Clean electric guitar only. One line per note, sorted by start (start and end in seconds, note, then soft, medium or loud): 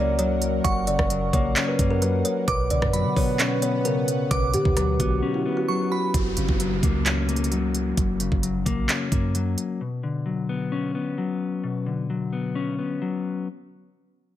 0.00 0.19 C#3 medium
0.00 0.18 F#3 medium
0.00 1.10 A#3 medium
0.00 0.88 C#4 loud
0.19 1.09 F#3 loud
0.87 2.02 C#3 medium
1.10 2.01 F#3 medium
1.33 1.78 A#3 medium
1.56 2.48 C#4 loud
1.79 2.48 A#3 medium
2.02 2.48 F#3 medium
2.48 3.62 B2 loud
2.71 3.85 D3 medium
2.93 4.08 F#3 medium
3.16 3.61 B3 loud
3.39 4.54 C#4 loud
3.62 4.77 B3 medium
3.85 4.53 C#3 medium
4.31 5.45 B2 loud
4.54 5.68 D3 medium
4.77 5.68 F#3 medium
5.00 5.44 B3 medium
5.22 6.14 C#4 loud
5.46 6.14 B3 medium
5.69 6.14 F#3 medium
6.14 7.29 F#2 medium
6.37 7.52 C#3 medium
6.60 7.50 F#3 medium
6.83 7.27 A#3 medium
7.06 8.21 C#4 loud
7.28 8.43 A#3 medium
7.52 8.42 F#3 loud
7.97 9.12 F#2 medium
8.20 9.35 C#3 medium
8.43 9.34 F#3 medium
8.66 9.11 A#3 medium
8.89 9.81 C#4 loud
9.12 9.80 A#3 medium
9.35 9.81 F#3 medium
9.81 10.95 B2 medium
10.03 11.18 D3 medium
10.26 11.17 F#3 medium
10.49 10.94 B3 medium
10.72 11.87 C#4 loud
10.95 12.09 B3 medium
11.18 12.09 F#3 medium
11.64 12.78 B2 medium
11.86 13.01 D3 medium
12.10 13.01 F#3 medium
12.33 12.77 B3 medium
12.55 13.47 C#4 medium
12.78 13.47 B3 medium
13.02 13.47 F#3 medium